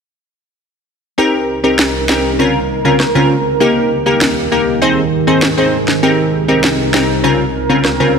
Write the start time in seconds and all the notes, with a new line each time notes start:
1.18 C4 D#4 G4 A#4
1.63 C4 D#4 G4 A#4
1.79 snare
2.09 C4 D#4 G4 A#4, snare
2.39 C#3 C4 C#4 F4 A#4
2.85 C#3 C4 C#4 F4 A#4
3.00 cross-stick, snare
3.15 C#3 C4 C#4 F4 A#4
3.60 D#3 A#3 D#4 G4 A#4
4.06 A#3 D#4 G4 A#4
4.21 snare
4.52 A#3 D#4 G4 A#4
4.82 C4 D#4 G#4 C5
5.27 C4 D#4 G#4 C5
5.42 cross-stick, snare
5.57 C4 D#4 G#4 C5
5.88 snare
6.03 C4 D#4 G4 A#4
6.48 C4 D#4 G4 A#4
6.64 snare
6.93 C4 D#4 G4 A#4, snare
7.24 C#3 C4 C#4 F4 A#4
7.69 C#3 C4 C#4 F4 A#4
7.85 cross-stick, snare
8.00 C#3 C4 C#4 F4 A#4